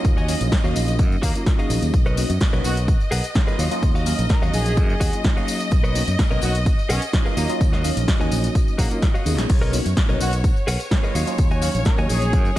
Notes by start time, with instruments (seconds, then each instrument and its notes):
Already playing: tine electric piano F#3 A#3 C#4 D#4 F4, violin section D#5
0.05 fingered electric bass D#2, kick, closed hi-hat, tambourine
0.17 clean electric guitar F#4 C#5 D#5 G#5, tambourine
0.28 tine electric piano F#3 A#3 C#4 D#4 F5, open hi-hat, tambourine
0.41 fingered electric bass A#1, closed hi-hat, tambourine
0.52 muted clean electric guitar stroke, kick, snare, closed hi-hat, tambourine
0.64 fingered electric bass D#2, tine electric piano F#3 A#3 C#4 D#4 F#4, clean electric guitar F#4 C#5 D#5 F5, tambourine
0.75 fingered electric bass A#1, open hi-hat, tambourine
0.88 closed hi-hat, tambourine
0.99 fingered electric bass F#2, kick, closed hi-hat, tambourine
1.12 tambourine
1.22 fingered electric bass D#2, horn section A#3, clean electric guitar F#4 C#5 D#5 F5, kick, open hi-hat, tambourine
1.35 tine electric piano F#3 A#3 C#4 D#4 F4, horn section A#3, closed hi-hat, tambourine
1.46 tine electric piano F#3 A#3 C#4 D#4 F4, muted clean electric guitar stroke, kick, snare, closed hi-hat, tambourine
1.58 tine electric piano F#3 A#3 C#4 D#4 G#4, clean electric guitar F#4 C#5 D#5 F5, tambourine
1.70 fingered electric bass A#1, open hi-hat, tambourine
1.82 fingered electric bass D#2, closed hi-hat, tambourine
1.94 fingered electric bass B1, violin section D#5, kick, closed hi-hat, tambourine
2.06 clean electric guitar A#4 B4 C#5 D#5, tambourine
2.17 tine electric piano A#3 B3 C#4 D#4 F#4, open hi-hat, tambourine
2.30 fingered electric bass F#2, closed hi-hat, tambourine
2.40 muted clean electric guitar stroke, kick, snare, closed hi-hat, tambourine
2.53 fingered electric bass B1, tine electric piano A#3 B3 C#4 D#4 F#4, clean electric guitar A#4 B4 C#5 D#5, tambourine
2.64 fingered electric bass B1, horn section F#4, open hi-hat, tambourine
2.77 closed hi-hat, tambourine
2.88 kick, closed hi-hat, tambourine
3.00 tambourine
3.11 fingered electric bass B1, clean electric guitar G#4 A#4 B4 F#5, open hi-hat, tambourine
3.24 closed hi-hat, tambourine
3.35 tine electric piano F#3 A#3 C#4 D#4 F4, muted clean electric guitar stroke, kick, snare, closed hi-hat, tambourine
3.47 clean electric guitar G#4 A#4 B4 D#5, tambourine
3.58 fingered electric bass D#2, clean electric guitar F#4 C#5 D#5 F5, open hi-hat, tambourine
3.71 tine electric piano F#3 A#3 C#4 D#4 F4, closed hi-hat, tambourine
3.83 fingered electric bass D#2, kick, closed hi-hat, tambourine
3.95 clean electric guitar F#4 C#5 D#5 F5, tambourine
4.06 tine electric piano F#3 A#3 C#4 D#4 F5, open hi-hat, tambourine
4.19 fingered electric bass A#1, closed hi-hat, tambourine
4.29 horn section A#4, muted clean electric guitar stroke, kick, snare, closed hi-hat, tambourine
4.42 fingered electric bass D#2, tine electric piano F#3 A#3 C#4 D#4 F#4, clean electric guitar F#4 C#5 D#5 F5, tambourine
4.54 fingered electric bass A#1, horn section G#4, open hi-hat, tambourine
4.66 closed hi-hat, tambourine
4.77 fingered electric bass F#2, kick, closed hi-hat, tambourine
4.90 tambourine
5.00 fingered electric bass D#2, clean electric guitar F#4 C#5 D#5 F#5, kick, open hi-hat, tambourine
5.12 tine electric piano F#3 A#3 C#4 D#4 F4, closed hi-hat, tambourine
5.24 tine electric piano F#3 A#3 C#4 D#4 F4, muted clean electric guitar stroke, kick, snare, closed hi-hat, tambourine
5.36 tine electric piano F#3 A#3 C#4 D#4 G#4, clean electric guitar F#4 C#5 D#5 F5, tambourine
5.48 open hi-hat, tambourine
5.60 closed hi-hat, tambourine
5.71 fingered electric bass B1, kick, closed hi-hat, tambourine
5.84 clean electric guitar A#4 B4 C#5 D#5, tambourine
5.95 tine electric piano A#3 B3 C#4 D#4 F#4, open hi-hat, tambourine
6.07 fingered electric bass F#2, closed hi-hat, tambourine
6.18 muted clean electric guitar stroke, kick, snare, closed hi-hat, tambourine
6.30 fingered electric bass B1, tine electric piano A#3 B3 C#4 D#4 F#4, clean electric guitar A#4 B4 C#5 D#5, tambourine
6.42 fingered electric bass B1, horn section F#4, open hi-hat, tambourine
6.55 closed hi-hat, tambourine
6.66 kick, closed hi-hat, tambourine
6.79 tambourine
6.89 fingered electric bass B1, horn section C#4, clean electric guitar G#4 A#4 B4 F#5, open hi-hat, tambourine
7.02 closed hi-hat, tambourine
7.13 tine electric piano F#3 A#3 C#4 D#4 F4, muted clean electric guitar stroke, kick, snare, closed hi-hat, tambourine
7.25 clean electric guitar G#4 A#4 B4 F5, tambourine
7.36 fingered electric bass D#2, horn section A#3, clean electric guitar F#4 C#5 D#5 F5, open hi-hat, tambourine
7.49 tine electric piano F#3 A#3 C#4 D#4 F4, closed hi-hat, tambourine
7.61 fingered electric bass D#2, kick, closed hi-hat, tambourine
7.72 clean electric guitar F#4 C#5 D#5 F5, snare, tambourine
7.84 tine electric piano F#3 A#3 C#4 D#4 F5, open hi-hat, tambourine
7.97 fingered electric bass A#1, closed hi-hat, tambourine
8.07 muted clean electric guitar stroke, kick, snare, closed hi-hat, tambourine
8.19 fingered electric bass D#2, tine electric piano F#3 A#3 C#4 D#4 F#4, clean electric guitar F#4 C#5 D#5 G#5, tambourine
8.31 fingered electric bass A#1, open hi-hat, tambourine
8.44 closed hi-hat, tambourine
8.55 kick, closed hi-hat, tambourine
8.68 tambourine
8.78 fingered electric bass A#1, tine electric piano F#3 A#3 C#4 D#4 G#4, horn section A#3, clean electric guitar F#4 C#5 D#5 F#5, kick, open hi-hat, tambourine
8.91 tine electric piano F#3 A#3 C#4 D#4 F4, horn section A#3, closed hi-hat, tambourine
9.02 muted clean electric guitar stroke, kick, snare, closed hi-hat, tambourine
9.14 clean electric guitar F#4 C#5 D#5 F5, tambourine
9.25 fingered electric bass D#2, tine electric piano A#3 B3 C#4 D#4 G#4, open hi-hat, tambourine
9.38 fingered electric bass A#1, snare, closed hi-hat, tambourine
9.49 fingered electric bass B1, violin section C#5, kick, closed hi-hat, crash, tambourine
9.61 clean electric guitar A#4 B4 C#5 D#5, tambourine
9.73 tine electric piano A#3 B3 C#4 D#4 F#4, open hi-hat, tambourine
9.86 fingered electric bass F#2, closed hi-hat, tambourine
9.96 muted clean electric guitar stroke, kick, snare, closed hi-hat, tambourine
10.09 fingered electric bass B1, tine electric piano A#3 B3 C#4 D#4 F#4, clean electric guitar A#4 B4 C#5 D#5, tambourine
10.20 fingered electric bass B1, horn section F#4, open hi-hat, tambourine
10.33 closed hi-hat, tambourine
10.44 kick, closed hi-hat, tambourine
10.56 tambourine
10.67 fingered electric bass B1, clean electric guitar G#4 A#4 B4 F#5, open hi-hat, tambourine
10.80 closed hi-hat, tambourine
10.91 tine electric piano F#3 A#3 C#4 D#4 F4, muted clean electric guitar stroke, kick, snare, closed hi-hat, tambourine
11.03 clean electric guitar G#4 A#4 B4 D#5, tambourine
11.14 fingered electric bass D#2, clean electric guitar F#4 C#5 D#5 F5, open hi-hat, tambourine
11.27 tine electric piano F#3 A#3 C#4 D#4 F4, closed hi-hat, tambourine
11.38 fingered electric bass D#2, kick, closed hi-hat, tambourine
11.50 clean electric guitar F#4 C#5 D#5 G#5, tambourine
11.62 tine electric piano F#3 A#3 C#4 D#4 F5, open hi-hat, tambourine
11.75 fingered electric bass A#1, closed hi-hat, tambourine
11.85 horn section A#4, kick, snare, closed hi-hat, tambourine
11.97 fingered electric bass D#2, tine electric piano F#3 A#3 C#4 D#4 F#4, clean electric guitar F#4 C#5 D#5 G#5, tambourine
12.09 fingered electric bass A#1, horn section G#4, open hi-hat, tambourine
12.22 closed hi-hat, tambourine
12.33 fingered electric bass F#2, kick, closed hi-hat, tambourine
12.45 tambourine